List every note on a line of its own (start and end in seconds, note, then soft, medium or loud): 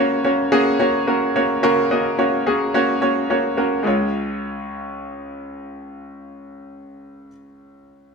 0.00 0.20 C#3 medium
0.00 0.24 A#3 medium
0.00 0.24 C#4 medium
0.00 0.24 F#4 medium
0.00 0.25 C#5 loud
0.24 0.50 A#3 medium
0.24 0.50 C#4 medium
0.24 0.50 F#4 medium
0.24 0.50 C#5 medium
0.52 0.78 A#3 medium
0.52 0.78 C#4 medium
0.52 0.78 F#4 medium
0.52 0.78 G#4 medium
0.80 1.05 A#3 medium
0.80 1.05 C#4 medium
0.80 1.05 F#4 medium
0.80 1.06 C#5 medium
1.07 1.33 A#3 medium
1.07 1.33 C#4 medium
1.07 1.33 F#4 medium
1.07 1.33 A#4 medium
1.36 1.61 A#3 medium
1.36 1.61 C#4 medium
1.36 1.61 F#4 medium
1.36 1.61 C#5 medium
1.63 2.42 C#3 medium
1.63 1.89 A#3 medium
1.63 1.89 C#4 medium
1.63 1.89 F#4 medium
1.63 1.89 A#4 medium
1.91 2.17 A#3 medium
1.91 2.17 C#4 medium
1.91 2.17 F#4 medium
1.91 2.17 D#5 medium
2.18 2.44 A#3 medium
2.18 2.44 C#4 medium
2.18 2.45 F#4 medium
2.18 2.44 C#5 medium
2.46 2.72 A#3 medium
2.46 2.72 C#4 medium
2.46 2.72 F#4 medium
2.46 2.72 G#4 medium
2.74 3.00 A#3 medium
2.74 3.00 C#4 medium
2.74 3.00 F#4 medium
2.74 3.00 C#5 medium
3.01 3.28 A#3 medium
3.01 3.28 C#4 medium
3.01 3.28 F#4 medium
3.01 3.28 C#5 medium
3.30 3.56 A#3 medium
3.30 3.56 C#4 medium
3.30 3.56 F#4 medium
3.30 3.56 C#5 medium
3.57 3.83 A#3 medium
3.57 3.83 C#4 medium
3.57 3.83 F#4 medium
3.57 3.83 A#4 medium
3.83 7.29 C#2 medium
3.83 7.27 G#3 medium
3.83 7.28 C#4 medium
3.83 7.29 F4 medium
3.87 7.31 C#5 medium